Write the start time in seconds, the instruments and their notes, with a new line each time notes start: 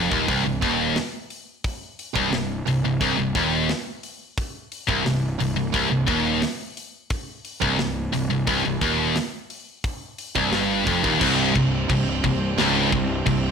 Already playing: picked electric bass F1, distorted electric guitar F2
0.11 picked electric bass D#1, distorted electric guitar D#2, kick
0.28 picked electric bass C1, distorted electric guitar C2, kick, open hi-hat
0.45 picked electric bass C1, distorted electric guitar C2
0.62 picked electric bass D#1, distorted electric guitar D#2, kick, open hi-hat
0.96 snare, open hi-hat
1.30 open hi-hat
1.64 kick, open hi-hat
1.99 open hi-hat
2.16 picked electric bass C1, distorted electric guitar C2, kick
2.33 picked electric bass C1, distorted electric guitar C2, snare, open hi-hat
2.66 picked electric bass C1, distorted electric guitar C2, open hi-hat
2.83 picked electric bass C1, distorted electric guitar C2
3.01 picked electric bass C1, distorted electric guitar C2, kick, open hi-hat
3.17 picked electric bass C1, distorted electric guitar C2
3.35 picked electric bass D#1, distorted electric guitar D#2, kick, open hi-hat
3.69 snare, open hi-hat
4.03 open hi-hat
4.38 kick, open hi-hat
4.72 open hi-hat
4.88 picked electric bass C1, distorted electric guitar C2, kick
5.06 picked electric bass C1, distorted electric guitar C2, snare, open hi-hat
5.40 picked electric bass C1, distorted electric guitar C2, open hi-hat
5.56 picked electric bass C1, distorted electric guitar C2
5.74 picked electric bass C1, distorted electric guitar C2, kick, open hi-hat
5.90 picked electric bass C1, distorted electric guitar C2
6.07 picked electric bass D#1, distorted electric guitar D#2, kick, open hi-hat
6.42 snare, open hi-hat
6.77 open hi-hat
7.10 kick, open hi-hat
7.45 open hi-hat
7.62 picked electric bass C1, distorted electric guitar C2, kick
7.78 picked electric bass C1, distorted electric guitar C2, snare, open hi-hat
8.13 picked electric bass C1, distorted electric guitar C2, open hi-hat
8.30 picked electric bass C1, distorted electric guitar C2
8.47 picked electric bass C1, distorted electric guitar C2, kick, open hi-hat
8.65 picked electric bass C1, distorted electric guitar C2
8.81 picked electric bass D#1, distorted electric guitar D#2, kick, open hi-hat
9.16 snare, open hi-hat
9.50 open hi-hat
9.84 kick, open hi-hat
10.18 open hi-hat
10.35 picked electric bass C1, distorted electric guitar C2, kick
10.53 picked electric bass G1, distorted electric guitar G2, snare, open hi-hat
10.87 picked electric bass F1, distorted electric guitar F2, kick, open hi-hat
11.04 picked electric bass D#1, distorted electric guitar D#2, kick
11.20 picked electric bass C1, distorted electric guitar C2, string section C3 G3 C4, kick, crash
11.55 picked electric bass C1, distorted electric guitar C2, kick, crash
11.90 picked electric bass C1, distorted electric guitar C2, kick, crash
12.24 picked electric bass C1, distorted electric guitar C2, kick, crash
12.58 picked electric bass C#1, distorted electric guitar C#2, snare, crash
12.92 picked electric bass C1, distorted electric guitar C2, kick, crash
13.26 picked electric bass C1, distorted electric guitar C2, kick, crash